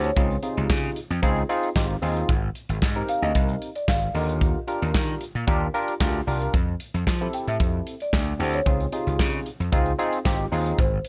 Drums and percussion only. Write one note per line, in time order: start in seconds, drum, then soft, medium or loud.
0.04 closed hi-hat soft
0.16 kick loud
0.16 closed hi-hat medium
0.31 closed hi-hat soft
0.43 closed hi-hat medium
0.57 closed hi-hat soft
0.70 kick loud
0.70 snare loud
0.70 clap medium
0.83 closed hi-hat soft
0.96 closed hi-hat medium
1.10 closed hi-hat soft
1.23 kick loud
1.23 closed hi-hat medium
1.36 closed hi-hat soft
1.49 closed hi-hat medium
1.63 closed hi-hat soft
1.76 kick loud
1.76 snare loud
1.76 clap medium
2.03 open hi-hat medium
2.17 closed hi-hat soft
2.29 kick loud
2.29 closed hi-hat medium
2.55 closed hi-hat medium
2.70 closed hi-hat soft
2.82 kick loud
2.82 snare loud
2.82 clap medium
3.09 closed hi-hat medium
3.23 closed hi-hat soft
3.35 kick medium
3.35 closed hi-hat medium
3.49 closed hi-hat soft
3.62 closed hi-hat medium
3.76 closed hi-hat soft
3.88 kick loud
3.88 snare medium
3.88 clap medium
4.15 open hi-hat medium
4.29 closed hi-hat medium
4.41 kick loud
4.41 closed hi-hat medium
4.68 closed hi-hat medium
4.82 closed hi-hat soft
4.94 kick loud
4.94 snare loud
4.94 clap medium
5.08 closed hi-hat soft
5.21 closed hi-hat medium
5.35 closed hi-hat soft
5.48 kick loud
5.48 closed hi-hat medium
5.74 closed hi-hat medium
5.88 closed hi-hat soft
6.01 kick loud
6.01 snare medium
6.01 clap medium
6.15 closed hi-hat soft
6.28 open hi-hat medium
6.42 closed hi-hat soft
6.54 kick loud
6.54 closed hi-hat medium
6.80 closed hi-hat medium
6.95 closed hi-hat soft
7.07 kick loud
7.07 snare loud
7.07 clap medium
7.21 closed hi-hat soft
7.33 closed hi-hat medium
7.48 closed hi-hat soft
7.60 kick loud
7.60 closed hi-hat medium
7.87 closed hi-hat medium
8.00 closed hi-hat soft
8.13 kick loud
8.13 snare medium
8.13 clap medium
8.27 closed hi-hat soft
8.40 open hi-hat medium
8.54 closed hi-hat medium
8.66 kick loud
8.66 closed hi-hat medium
8.80 closed hi-hat soft
8.92 closed hi-hat medium
9.07 closed hi-hat soft
9.19 kick loud
9.19 snare loud
9.19 clap medium
9.33 closed hi-hat soft
9.46 closed hi-hat medium
9.60 closed hi-hat soft
9.72 kick loud
9.72 closed hi-hat medium
9.86 closed hi-hat soft
9.99 closed hi-hat medium
10.13 closed hi-hat soft
10.25 kick loud
10.25 snare medium
10.25 clap medium
10.52 open hi-hat medium
10.66 closed hi-hat soft
10.78 kick loud
10.78 closed hi-hat medium
11.05 closed hi-hat medium